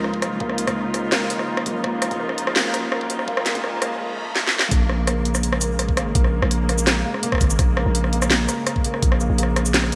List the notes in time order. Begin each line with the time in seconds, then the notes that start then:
Already playing: C#2 C#3 F3 G#3 A#3 D#4 F4, riser
0.04 cross-stick
0.14 kick
0.22 B1 A#3, cross-stick, closed hi-hat
0.40 C#2 A#3, kick
0.49 cross-stick
0.58 closed hi-hat
0.67 C#2, cross-stick, closed hi-hat
0.94 A#3, cross-stick, closed hi-hat
1.12 A#3, cross-stick, snare
1.30 closed hi-hat
1.39 cross-stick
1.57 kick, cross-stick
1.66 B1 A#3, kick, closed hi-hat
1.84 C#2 A#3, kick, cross-stick
2.02 cross-stick, closed hi-hat
2.11 C#2, closed hi-hat
2.20 A#3
2.29 cross-stick
2.38 closed hi-hat
2.47 cross-stick
2.56 A#3, snare
2.74 cross-stick, closed hi-hat
2.92 A#3, cross-stick
3.01 kick
3.10 closed hi-hat
3.19 cross-stick
3.28 C#2 A#3, kick
3.37 cross-stick
3.46 A#3, snare, closed hi-hat
3.55 C#2, closed hi-hat
3.64 A#3, cross-stick
3.82 A#3, cross-stick, closed hi-hat
4.36 snare
4.48 snare
4.59 snare
4.71 A#1 C#3 G#3 A#3, kick, closed hi-hat
4.89 A#3, cross-stick
5.07 A#3, cross-stick, closed hi-hat
5.25 closed hi-hat
5.35 cross-stick, shaker
5.43 closed hi-hat
5.53 cross-stick
5.61 A#3, closed hi-hat, shaker
5.79 cross-stick, closed hi-hat
5.89 kick
5.97 G#1 A#3, cross-stick, closed hi-hat
6.15 A#1 A#3, kick, closed hi-hat
6.24 cross-stick
6.42 A#1, cross-stick
6.51 closed hi-hat
6.69 A#3, cross-stick, closed hi-hat
6.78 shaker
6.87 cross-stick, snare, closed hi-hat
7.05 A#3
7.14 cross-stick
7.23 A#3, closed hi-hat
7.32 kick, cross-stick
7.35 cross-stick
7.41 G#1, kick, cross-stick, closed hi-hat, shaker
7.47 cross-stick, shaker
7.59 A#1, kick, cross-stick, closed hi-hat
7.77 A#3, cross-stick
7.86 A#1
7.95 closed hi-hat
8.04 cross-stick
8.13 A#3, closed hi-hat
8.22 cross-stick, shaker
8.31 A#3, snare, closed hi-hat
8.49 cross-stick, closed hi-hat, shaker
8.67 cross-stick, closed hi-hat
8.76 kick
8.84 A#3, closed hi-hat
8.94 cross-stick
9.03 A#1, kick, closed hi-hat
9.12 cross-stick
9.20 A#3, shaker
9.30 A#1
9.38 A#3, closed hi-hat
9.43 cross-stick
9.56 cross-stick, closed hi-hat
9.66 shaker
9.74 snare, closed hi-hat
9.84 cross-stick